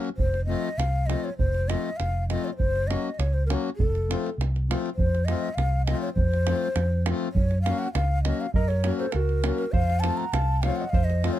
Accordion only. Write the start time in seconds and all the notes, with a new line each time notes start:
0.47 F3 A3 C4 F4
1.07 F3 A3 C4 F4
1.68 F3 A3 C4 F4
2.30 F3 A3 C4 F4
2.87 F#3 A#3 C#4 F#4
3.48 F#3 A#3 C#4 F#4
4.09 F3 A3 C4 F4
4.69 F3 A3 C4 F4
5.29 F3 A3 C4 F4
5.89 F3 A3 C4 F4
6.47 F3 A3 C4 F4
7.08 F3 A3 C4 F4
7.67 F#3 A#3 C#4 F#4
8.25 F#3 A#3 C#4 F#4
8.84 F#3 A#3 C#4 F#4
9.43 F#3 A#3 C#4 F#4
10.02 F3 A3 C4 F4
10.64 F3 A3 C4 F4
11.23 F3 A3 C4 F4